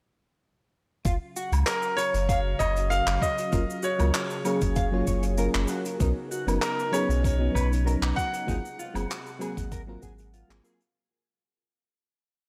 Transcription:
1.04 F#1 C#3 F#3 F4 F5, kick, closed hi-hat, cabasa
1.36 F#4, cabasa
1.52 C#2, closed hi-hat, cabasa, low woodblock
1.66 A#4, clap, closed hi-hat, cabasa
1.82 cabasa
1.97 C#5, closed hi-hat, cabasa, low woodblock
2.14 F#1, closed hi-hat, cabasa
2.29 F5, kick, closed hi-hat, cabasa
2.59 F#1 C#5 D#5, kick, closed hi-hat, cabasa, low woodblock
2.76 closed hi-hat, cabasa
2.90 A#4 F5, closed hi-hat, cabasa
3.06 F#1, clap
3.21 F#4 D#5, kick, cabasa
3.38 closed hi-hat, cabasa
3.51 F#1 F#3 A#3 C#4 F4 G#4 A#4, kick, closed hi-hat, cabasa
3.70 cabasa
3.83 F#4 C#5, cabasa
3.98 C#2 F#3 A#3 C#4 F4 A#4, closed hi-hat, cabasa, low woodblock
4.14 A#4, clap, closed hi-hat, cabasa
4.30 cabasa
4.44 F#3 A#3 C#4 G#4 C#5 F5, closed hi-hat, cabasa, low woodblock
4.61 F#1, kick, closed hi-hat, cabasa
4.76 F5, kick, closed hi-hat, cabasa
4.92 F#3 A#3 C#4 F4 C#5
5.07 F#1 C#5, kick, closed hi-hat, cabasa
5.23 closed hi-hat, cabasa
5.37 F#3 A#3 C#4 F4 A#4, closed hi-hat, cabasa
5.54 F#1, clap
5.68 F#4, closed hi-hat, cabasa
5.85 closed hi-hat, cabasa
6.00 B1 C#3 F#3 B3 C#4 D#4 A#4, kick, closed hi-hat, cabasa
6.31 F#4, cabasa
6.46 F#1 F#3 B3 C#4 D#4 A#4, closed hi-hat, cabasa, low woodblock
6.61 A#4, clap, closed hi-hat, cabasa
6.79 cabasa
6.91 F#3 B3 C#4 D#4 G#4 B4 C#5, closed hi-hat, cabasa, low woodblock
7.09 B1, closed hi-hat, cabasa
7.24 C#5, kick, closed hi-hat, cabasa
7.39 F#3 B3 C#4 D#4
7.55 B1 B4, kick, closed hi-hat, cabasa, low woodblock
7.73 closed hi-hat, cabasa
7.84 F#3 B3 C#4 D#4 A#4 A#5, closed hi-hat, cabasa
8.02 B1, clap
8.16 F#4 F#5, kick, cabasa
8.33 closed hi-hat, cabasa
8.47 G#1 C3 F#3 G#3 A#3 C4 D#4 F4 G#4 F#5, kick, closed hi-hat, cabasa
8.65 cabasa
8.79 F4, cabasa
8.94 F#1 F#3 A#3 C4 F4 G#4, closed hi-hat, cabasa, low woodblock
9.10 F#4, clap, closed hi-hat, cabasa
9.26 cabasa
9.39 F#3 A#3 C4 G#4 F#5, closed hi-hat, cabasa, low woodblock
9.57 G#1, kick, closed hi-hat, cabasa
9.71 A#4, kick, closed hi-hat, cabasa
9.87 F#3 A#3 C4 F4 A#4
10.00 G#1 F#3 A#3 C4 G#4 F#5, kick, closed hi-hat, cabasa
10.18 closed hi-hat, cabasa
10.33 F4, closed hi-hat, cabasa
10.48 G#1 F#3 A#3 C4 F4 G#4, clap
10.62 F#3 A#3 C4 F4 G#4 A#4, closed hi-hat, cabasa
10.80 closed hi-hat, cabasa

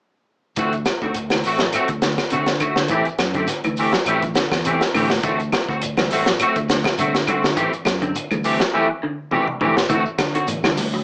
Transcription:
0.56 D2 E3 A3 C4 F#4, kick, closed hi-hat, shekere
0.73 muted clean electric guitar stroke, closed hi-hat, shekere
0.86 muted clean electric guitar stroke, kick, snare, closed hi-hat, claves, shekere
1.01 D2 D3 C4 F#4, kick, shekere
1.14 muted clean electric guitar stroke, closed hi-hat, shekere
1.30 E3, snare, closed hi-hat, claves, shekere
1.44 A1 A3 C4 F#4, open hi-hat, shekere
1.59 F#3, muted clean electric guitar stroke, snare, closed hi-hat, shekere
1.73 A3 C4 F#4, closed hi-hat, claves, shekere
1.88 D2, muted clean electric guitar stroke, kick, closed hi-hat, shekere
2.02 D3, muted clean electric guitar stroke, snare, closed hi-hat, shekere
2.18 kick, snare, closed hi-hat, claves, shekere
2.30 C3 D3 A3 C4 F#4, closed hi-hat, shekere
2.46 muted clean electric guitar stroke, snare, closed hi-hat, shekere
2.60 D3 A3 F#4, muted clean electric guitar stroke, kick, closed hi-hat, claves, shekere
2.76 D3, muted clean electric guitar stroke, snare, shekere
2.88 A1 E3 A3 C4 G4, kick, closed hi-hat, shekere
3.05 muted clean electric guitar stroke, closed hi-hat, shekere
3.18 F#2, muted clean electric guitar stroke, kick, snare, closed hi-hat, claves, shekere
3.34 D3 A3 C4 G4, kick, closed hi-hat, shekere
3.47 muted clean electric guitar stroke, snare, closed hi-hat, shekere
3.64 D2 E3, closed hi-hat, claves, shekere
3.77 E3 A3 C4 G4, open hi-hat, shekere
3.92 F#3, muted clean electric guitar stroke, snare, closed hi-hat, shekere
4.05 A1 E3 A3 C4 G4, closed hi-hat, claves, shekere
4.22 muted clean electric guitar stroke, kick, closed hi-hat, shekere
4.35 D3, muted clean electric guitar stroke, snare, closed hi-hat, shekere
4.51 E2, kick, snare, closed hi-hat, claves, shekere
4.65 C3 E3 A3 C4 G4, closed hi-hat, shekere
4.81 muted clean electric guitar stroke, snare, closed hi-hat, shekere
4.95 A2 D3 E3 A3 C4 G4, open hi-hat, claves, shekere
5.10 muted clean electric guitar stroke, snare, shekere
5.23 D2 E3 A3 C4 F#4, kick, closed hi-hat, high conga, shekere
5.40 muted clean electric guitar stroke, closed hi-hat, shekere
5.52 muted clean electric guitar stroke, kick, snare, closed hi-hat, high conga, claves, shekere
5.68 D2 C4 F#4, muted clean electric guitar stroke, kick, shekere
5.82 muted clean electric guitar stroke, closed hi-hat, high conga, shekere
5.97 E3, snare, closed hi-hat, high conga, claves, shekere
6.11 A1 A3 C4 F#4, snare, open hi-hat, shekere
6.26 F#3, muted clean electric guitar stroke, snare, closed hi-hat, shekere
6.40 A3 C4 F#4, closed hi-hat, high conga, claves, shekere
6.56 D2, muted clean electric guitar stroke, kick, closed hi-hat, shekere
6.69 D3, muted clean electric guitar stroke, snare, closed hi-hat, shekere
6.84 kick, snare, closed hi-hat, high conga, claves, shekere
6.98 C3 D3 A3 C4 F#4, closed hi-hat, high conga, shekere
7.15 muted clean electric guitar stroke, snare, closed hi-hat, shekere
7.27 D3 A3 C4 F#4, kick, closed hi-hat, high conga, claves, shekere
7.44 D3, muted clean electric guitar stroke, snare, shekere
7.56 A1 E3 A3 C4 G4, kick, closed hi-hat, high conga, shekere
7.73 muted clean electric guitar stroke, closed hi-hat, shekere
7.85 F#2, muted clean electric guitar stroke, kick, snare, closed hi-hat, high conga, claves, shekere
8.02 D3 C4, muted clean electric guitar stroke, kick, closed hi-hat, shekere
8.15 muted clean electric guitar stroke, closed hi-hat, high conga, shekere
8.31 D2 E3, closed hi-hat, high conga, claves, shekere
8.44 E3 A3 C4 G4, open hi-hat, shekere
8.60 F#3, muted clean electric guitar stroke, snare, closed hi-hat, shekere
8.74 E3 A3 C4 G4
8.89 muted clean electric guitar stroke
9.03 D3, muted clean electric guitar stroke
9.31 C3 E3 A3 C4 G4, high tom
9.47 muted clean electric guitar stroke, mid tom
9.61 D3 E3 A3 C4 G4, mid tom
9.77 muted clean electric guitar stroke, snare
9.89 D2 E3 A3 C4 F#4, kick, closed hi-hat, high conga, shekere
10.05 muted clean electric guitar stroke, shekere
10.18 D3, muted clean electric guitar stroke, kick, snare, closed hi-hat, high conga, claves, shekere
10.35 D3 C4 F#4, closed hi-hat, shekere
10.47 A1, muted clean electric guitar stroke, closed hi-hat, high conga, low conga, shekere
10.63 D3 E3, snare, high conga, claves, shekere
10.76 D2, snare, open hi-hat, high conga, low conga, shekere
10.93 F#3, muted clean electric guitar stroke, shekere

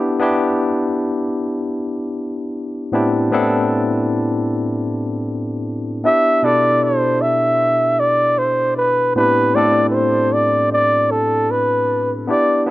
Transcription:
Already playing: B3 D4 E4 G4
0.20 B3 D4 E4 G4
2.92 A2 B3 C4 D4 E4 G4
3.31 A2 B3 C4 D4 E4 A4
6.04 B3 D4 E4 G4 E5
6.43 B2 D4 E4 A4 D5
6.84 C5
7.21 E5
8.00 D5
8.38 C5
8.77 B4
9.16 A2 B3 C4 D4 E4 G4 B4
9.55 A2 A3 C4 D4 E4 A4 D5
9.90 B4
9.94 C5
10.33 D5
10.72 D5
11.11 A4
11.51 B4
12.27 B3 D4 E4 G4 D5
12.66 B3 D4

